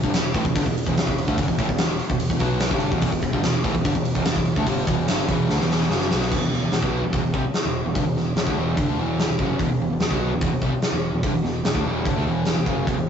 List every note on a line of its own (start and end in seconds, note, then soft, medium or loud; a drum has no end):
0.03 0.14 G1 medium
0.03 0.13 G2 medium
0.03 0.13 D3 loud
0.03 kick medium
0.14 0.34 E1 medium
0.14 0.31 E2 medium
0.14 0.31 B2 medium
0.14 snare loud
0.14 open hi-hat medium
0.33 0.44 A1 medium
0.33 0.44 A2 medium
0.33 0.44 E3 loud
0.33 kick loud
0.33 open hi-hat medium
0.45 0.55 E1 medium
0.45 0.54 E2 medium
0.45 0.55 B2 medium
0.45 kick medium
0.55 0.65 G1 medium
0.55 0.64 G2 medium
0.55 0.65 D3 medium
0.55 kick loud
0.55 open hi-hat medium
0.65 0.85 E1 medium
0.65 0.82 E2 medium
0.65 0.82 B2 medium
0.65 kick medium
0.78 open hi-hat medium
0.86 0.96 E1 medium
0.86 0.94 E2 medium
0.86 0.95 B2 medium
0.86 kick medium
0.95 1.07 E1 medium
0.95 1.05 E2 medium
0.95 1.06 B2 medium
0.95 snare loud
0.95 open hi-hat medium
1.06 1.26 E1 medium
1.06 1.23 E2 medium
1.06 1.23 B2 medium
1.06 kick medium
1.18 open hi-hat medium
1.28 1.37 D2 medium
1.28 1.37 D3 medium
1.28 1.38 A3 medium
1.28 kick medium
1.38 1.48 G1 loud
1.38 1.47 G2 medium
1.38 1.48 D3 medium
1.38 kick loud
1.38 open hi-hat medium
1.48 1.58 E1 medium
1.48 1.58 E2 medium
1.48 1.57 B2 medium
1.48 kick medium
1.58 1.68 A1 loud
1.58 1.68 A2 medium
1.58 1.68 E3 loud
1.58 kick medium
1.58 open hi-hat medium
1.68 1.79 E1 medium
1.68 1.77 E2 medium
1.68 1.77 B2 medium
1.68 kick medium
1.78 1.99 E1 medium
1.78 1.95 E2 medium
1.78 1.95 B2 medium
1.78 snare loud
1.78 open hi-hat medium
1.99 open hi-hat medium
2.09 2.29 E1 medium
2.09 2.26 E2 medium
2.09 2.26 B2 medium
2.09 kick loud
2.20 open hi-hat medium
2.30 2.40 E1 medium
2.30 2.41 E2 medium
2.30 2.39 B2 medium
2.30 kick loud
2.39 2.70 B1 loud
2.39 2.71 B2 loud
2.39 2.71 F#3 medium
2.39 2.72 B3 loud
2.39 kick medium
2.39 open hi-hat medium
2.60 snare loud
2.60 open hi-hat medium
2.70 2.90 G1 medium
2.70 2.91 G2 medium
2.70 2.91 D3 medium
2.70 2.92 G3 loud
2.70 kick medium
2.80 open hi-hat medium
2.91 3.01 E1 medium
2.91 3.00 E2 medium
2.91 3.01 B2 loud
2.91 kick medium
3.01 3.12 E1 loud
3.01 3.11 E2 medium
3.01 3.12 B2 loud
3.01 kick loud
3.01 open hi-hat medium
3.12 3.22 E1 medium
3.12 3.22 E2 medium
3.12 3.23 B2 medium
3.12 kick medium
3.22 3.33 E1 medium
3.22 3.32 E2 medium
3.22 3.34 B2 medium
3.22 kick medium
3.22 open hi-hat soft
3.33 3.43 G1 medium
3.33 3.43 G2 medium
3.33 3.43 D3 loud
3.33 kick medium
3.43 3.64 E1 medium
3.43 3.60 E2 medium
3.43 3.60 B2 medium
3.43 snare loud
3.43 open hi-hat medium
3.64 3.74 A1 medium
3.64 3.74 A2 loud
3.64 3.74 E3 loud
3.64 kick loud
3.64 open hi-hat medium
3.73 3.84 E1 medium
3.73 3.84 E2 medium
3.73 3.85 B2 medium
3.73 kick medium
3.84 3.95 G1 medium
3.84 3.94 G2 medium
3.84 3.95 D3 loud
3.84 kick loud
3.84 open hi-hat medium
3.95 4.14 E1 medium
3.95 4.11 E2 medium
3.95 4.12 B2 medium
3.95 kick medium
4.05 open hi-hat medium
4.15 4.25 E1 medium
4.15 4.25 E2 medium
4.15 4.25 B2 loud
4.15 kick medium
4.25 4.35 E1 medium
4.25 4.36 E2 medium
4.25 4.36 B2 medium
4.25 snare loud
4.25 open hi-hat medium
4.36 4.55 E1 medium
4.36 4.53 E2 medium
4.36 4.53 B2 medium
4.36 kick medium
4.46 open hi-hat medium
4.56 4.66 D2 medium
4.56 4.67 D3 medium
4.56 4.67 A3 loud
4.56 kick medium
4.66 4.86 G1 loud
4.66 4.87 G2 medium
4.66 4.87 D3 loud
4.66 4.87 G3 medium
4.66 kick medium
4.66 open hi-hat medium
4.87 5.06 E1 loud
4.87 5.07 E2 medium
4.87 5.08 B2 medium
4.87 5.08 E3 loud
4.87 kick loud
4.87 open hi-hat medium
5.08 5.28 G1 medium
5.08 5.28 G2 medium
5.08 5.28 D3 medium
5.08 5.29 G3 medium
5.08 snare loud
5.08 open hi-hat medium
5.29 5.48 E1 medium
5.29 5.49 E2 medium
5.29 5.48 B2 loud
5.29 5.49 E3 loud
5.29 kick medium
5.29 open hi-hat medium
5.48 5.59 D2 loud
5.48 5.58 D3 medium
5.48 5.59 A3 loud
5.48 snare medium
5.59 5.89 E1 medium
5.59 5.89 E2 medium
5.59 5.90 B2 medium
5.59 5.90 E3 medium
5.59 snare medium
5.71 snare medium
5.81 snare medium
5.90 6.09 F#1 medium
5.90 6.10 F#2 medium
5.90 6.10 C#3 medium
5.90 6.10 F#3 medium
5.90 snare medium
6.01 snare medium
6.11 6.30 B1 medium
6.11 6.31 B2 medium
6.11 6.31 F#3 medium
6.11 6.31 B3 medium
6.11 snare medium
6.22 snare medium
6.31 6.41 E1 medium
6.31 6.41 E2 medium
6.31 6.41 B2 medium
6.31 kick loud
6.31 crash medium
6.41 6.51 E1 medium
6.41 6.51 E2 medium
6.41 6.52 B2 medium
6.52 6.61 E1 medium
6.52 6.61 E2 medium
6.52 6.62 B2 medium
6.52 snare soft
6.62 6.71 E1 medium
6.62 6.71 E2 medium
6.62 6.72 B2 medium
6.72 6.82 E1 medium
6.72 6.83 E2 medium
6.72 6.82 B2 medium
6.72 snare loud
6.72 open hi-hat soft
6.82 7.01 B1 medium
6.82 7.02 B2 medium
6.82 7.03 F#3 medium
6.82 7.03 B3 medium
6.82 kick medium
7.02 7.12 E1 medium
7.02 7.12 E2 medium
7.02 7.13 B2 medium
7.13 7.23 E1 medium
7.13 7.23 E2 medium
7.13 7.23 B2 loud
7.13 kick loud
7.13 open hi-hat soft
7.23 7.33 E1 medium
7.23 7.34 E2 medium
7.23 7.33 B2 medium
7.34 7.43 C2 medium
7.34 7.43 C3 medium
7.34 7.44 G3 medium
7.34 kick loud
7.44 muted picked electric bass stroke soft
7.44 muted overdriven electric guitar stroke medium
7.54 snare loud
7.54 open hi-hat soft
7.65 7.84 E1 medium
7.65 7.81 E2 medium
7.65 7.81 B2 medium
7.84 7.94 E1 medium
7.84 7.95 E2 medium
7.84 7.95 B2 medium
7.95 8.02 G1 medium
7.95 8.05 G2 medium
7.95 8.05 D3 medium
7.95 kick loud
7.95 open hi-hat medium
8.03 8.13 E1 medium
8.03 8.15 E2 medium
8.07 8.15 B2 medium
8.14 8.34 E1 medium
8.14 8.32 E2 medium
8.14 8.32 B2 medium
8.14 snare soft
8.35 8.45 E1 medium
8.35 8.46 E2 medium
8.35 8.47 B2 medium
8.35 snare loud
8.35 open hi-hat soft
8.47 8.54 D2 medium
8.47 8.57 D3 medium
8.47 8.57 A3 medium
8.47 kick medium
8.55 8.75 E1 medium
8.55 8.77 E2 loud
8.55 8.77 B2 medium
8.59 8.78 E3 loud
8.77 8.85 G1 medium
8.77 8.87 G2 medium
8.77 8.88 D3 medium
8.77 kick loud
8.77 open hi-hat medium
8.85 8.96 D2 medium
8.85 8.98 D3 medium
8.89 8.98 A3 medium
8.98 9.26 E1 medium
8.98 9.29 E2 medium
8.98 9.29 B2 medium
8.98 9.29 E3 medium
9.19 snare loud
9.19 open hi-hat soft
9.29 9.38 E1 medium
9.29 9.40 E2 medium
9.29 9.40 B2 medium
9.39 9.58 F#1 medium
9.39 9.59 F#2 medium
9.39 9.60 C#3 medium
9.39 9.60 F#3 loud
9.39 kick loud
9.59 9.69 E1 loud
9.59 9.69 E2 medium
9.59 9.70 B2 medium
9.59 kick loud
9.59 open hi-hat medium
9.69 9.79 E1 medium
9.69 9.80 E2 medium
9.69 9.80 B2 medium
9.80 9.89 E1 medium
9.80 9.91 E2 medium
9.80 9.91 B2 medium
9.90 9.99 E1 medium
9.90 10.01 E2 medium
9.90 10.02 B2 medium
10.00 10.10 E1 medium
10.00 10.12 E2 medium
10.00 10.12 B2 medium
10.00 snare loud
10.00 open hi-hat soft
10.11 10.30 B1 medium
10.11 10.32 B2 medium
10.11 10.32 F#3 medium
10.11 10.32 B3 loud
10.11 kick loud
10.32 10.41 E1 medium
10.32 10.42 E2 medium
10.32 10.43 B2 medium
10.41 10.51 E1 medium
10.41 10.52 E2 medium
10.41 10.52 B2 loud
10.41 kick loud
10.41 open hi-hat soft
10.52 10.61 E1 medium
10.52 10.63 E2 medium
10.52 10.63 B2 medium
10.62 10.71 C2 medium
10.62 10.72 C3 medium
10.62 10.73 G3 medium
10.62 kick loud
10.74 muted picked electric bass stroke soft
10.74 muted overdriven electric guitar stroke soft
10.82 snare loud
10.82 open hi-hat soft
10.92 11.11 E1 medium
10.92 11.10 E2 medium
10.92 11.10 B2 medium
11.13 11.23 E1 medium
11.13 11.24 E2 medium
11.13 11.24 B2 medium
11.23 11.33 G1 medium
11.23 11.34 G2 medium
11.23 11.34 D3 medium
11.23 kick loud
11.23 open hi-hat medium
11.34 11.42 E1 medium
11.34 11.43 E2 medium
11.34 11.44 B2 medium
11.43 11.62 E1 medium
11.43 11.61 E2 medium
11.43 11.61 B2 medium
11.43 snare soft
11.65 11.74 E1 medium
11.65 11.75 E2 medium
11.65 11.75 B2 medium
11.65 snare loud
11.65 open hi-hat medium
11.75 11.84 D2 medium
11.75 11.85 D3 medium
11.75 11.85 A3 medium
11.75 kick medium
11.84 12.04 E1 medium
11.84 12.05 E2 medium
11.84 12.05 B2 loud
11.84 12.06 E3 medium
12.05 12.15 G1 medium
12.05 12.15 G2 medium
12.05 12.16 D3 medium
12.05 kick loud
12.05 open hi-hat medium
12.16 12.25 D2 medium
12.16 12.26 D3 medium
12.16 12.26 A3 medium
12.25 12.54 E1 medium
12.25 12.57 E2 medium
12.25 12.57 B2 medium
12.25 12.58 E3 medium
12.45 snare medium
12.45 open hi-hat soft
12.57 12.66 E1 medium
12.57 12.68 E2 medium
12.57 12.68 B2 medium
12.66 12.86 F#1 medium
12.66 12.88 F#2 loud
12.66 12.88 C#3 medium
12.66 12.88 F#3 medium
12.66 kick loud
12.87 12.96 E1 medium
12.87 12.98 E2 medium
12.87 12.98 B2 loud
12.87 kick medium
12.87 open hi-hat soft
12.97 13.07 E1 medium
12.97 13.07 E2 medium
12.97 13.07 B2 medium